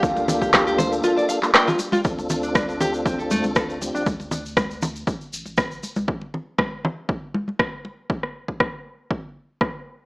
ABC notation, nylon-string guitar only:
X:1
M:4/4
L:1/16
Q:"Swing 16ths" 1/4=119
K:Dm
V:1 name="Nylon-string guitar"
z3 G G G c z F d f z g F z F | z3 D D D G z C A A, z A z2 D | z16 | z16 |
z16 |]